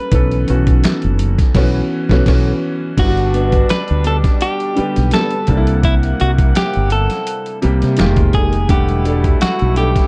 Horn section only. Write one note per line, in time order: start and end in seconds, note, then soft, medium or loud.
2.97 5.08 B2 medium
2.97 5.08 G3 medium
2.97 5.08 D4 medium
5.48 7.58 C3 medium
5.48 7.58 A#3 medium
5.48 7.58 F#5 medium
7.97 8.32 C3 medium
7.97 8.32 A#3 medium
7.97 8.32 F4 medium
8.69 10.07 B2 medium
8.69 10.07 A3 medium
8.69 10.07 E4 medium